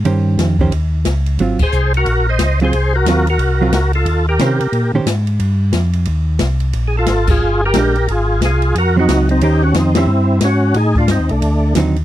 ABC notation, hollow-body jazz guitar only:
X:1
M:4/4
L:1/8
Q:"Swing" 1/4=179
K:Ebmix
V:1 name="Hollow-body jazz guitar"
[E,DGc]3 [E,DGc] z4 | [_G,CF] z6 [G,CF] | z2 [_G,CF] z2 [G,CF] z2 | z2 [E,DGc] z2 [E,DGc] z2 |
z8 | z6 [A,=DG] z | z4 z [_G,C]3 | [E,DGc]3 [E,DGc] z4 |
z6 [=D,^F,CE] z |]